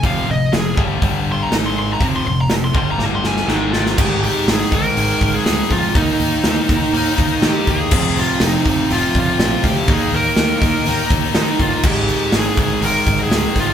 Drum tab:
CC |----------------|----------------|x---------------|----------------|
HH |o---o---o---o---|o---o-----------|--o-o-o-o-o-o-o-|o-o-o-o-o-o-o-o-|
SD |----o-------o---|----o---o-ooo-oo|----o-------o---|----o-------o---|
BD |o-----o-o-------|o-----o---------|o-----o---o---o-|o-----o---o---o-|

CC |x---------------|----------------|x---------------|
HH |--o-o-o-o-o-o-o-|o-o-o-o-o-o-o-o-|--o-o-o-o-o-o-o-|
SD |----o-------o-o-|----o-o-----o---|----o-------o-o-|
BD |o-----o---o---o-|o-----o---o---o-|o-----o---o---o-|